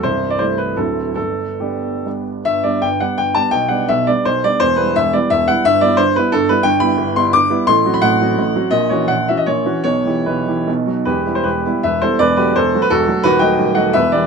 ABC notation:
X:1
M:3/4
L:1/16
Q:1/4=168
K:G
V:1 name="Grand piano"
c3 d c2 B2 A4 | A4 G6 z2 | e2 d2 g2 f2 g2 a2 | g2 f2 e2 d2 c2 d2 |
c2 B2 e2 d2 e2 f2 | e2 d2 c2 B2 A2 B2 | [K:Em] g2 b4 c'2 d'4 | c'3 b f8 |
^d2 ^c2 f2 e d c4 | ^c4 B4 z4 | [GB]3 c [GB]4 [Be]2 [Ac]2 | [Bd]2 [GB]2 [Ac]3 B [FA]4 |
[FB]2 [^dg]4 [df]2 [Be]2 [B=d]2 |]
V:2 name="Grand piano" clef=bass
[C,,,C,,]4 [G,A,E]4 [D,,,D,,F,CE]4 | [G,,,G,,]4 [G,B,D]4 [G,B,D]4 | [G,,,G,,]2 [G,B,D]2 [G,,,G,,]2 [G,B,D]2 [G,,,G,,]2 [G,B,D]2 | [B,,,B,,]2 [G,B,D]2 [B,,,B,,]2 [G,B,D]2 [B,,,B,,]2 [G,B,D]2 |
[E,,,E,,]2 [G,B,E]2 [E,,,E,,]2 [G,B,E]2 [E,,,E,,]2 [G,B,E]2 | [G,,,G,,]2 [G,B,E]2 [G,,,G,,]2 [G,B,E]2 [G,,,G,,]2 [G,B,E]2 | [K:Em] [G,,,G,,]2 [G,B,E]2 [G,,,G,,]2 [G,B,E]2 [G,,,G,,]2 [G,B,E]2 | [A,,,A,,]2 [F,CF]2 [A,,,A,,]2 [F,CF]2 [A,,,A,,]2 [F,CF]2 |
[^A,,,^A,,]2 [E,^CF]2 [A,,,A,,]2 [E,CF]2 [A,,,A,,]2 [E,CF]2 | [B,,,B,,]2 [E,EG]2 [B,,,B,,]2 [E,EG]2 [B,,,B,,]2 [F,^DF]2 | [E,,,E,,]2 [G,B,E]2 [E,,,E,,]2 [G,B,E]2 [E,,,E,,]2 [G,B,E]2 | [E,,,E,,]2 [F,A,F]2 [E,,,E,,]2 [F,A,F]2 [E,,,E,,]2 [F,A,F]2 |
[^D,,,^D,,]2 [F,A,F]2 [D,,,D,,]2 [F,A,F]2 [E,,,E,,]2 [E,B,G]2 |]